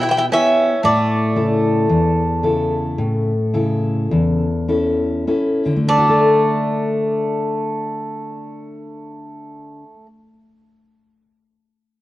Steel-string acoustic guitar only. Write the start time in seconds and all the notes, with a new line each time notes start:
Already playing: B2 B3 E4 G4
0.32 B3 E4 G4
0.84 A2
1.36 C#3 E4 A4
1.89 E2
2.43 C#3 E4 A4
2.98 A2
3.54 C#3 E4 A4
4.11 E2
4.68 C#4 E4 A4
5.27 C#4 E4 A4
5.66 D3
5.76 A3
5.87 D4
5.98 F#4
6.09 A4